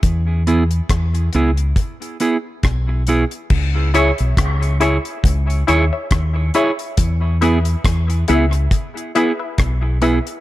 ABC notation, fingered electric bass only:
X:1
M:4/4
L:1/16
Q:"Swing 16ths" 1/4=69
K:C#m
V:1 name="Fingered electric bass" clef=bass
E,,4 E,,2 C,,2 z4 B,,,3 z | C,,3 B,,, C,,3 z C,,2 D,, z D,,2 z2 | E,,4 E,,2 C,,2 z4 B,,,3 z |]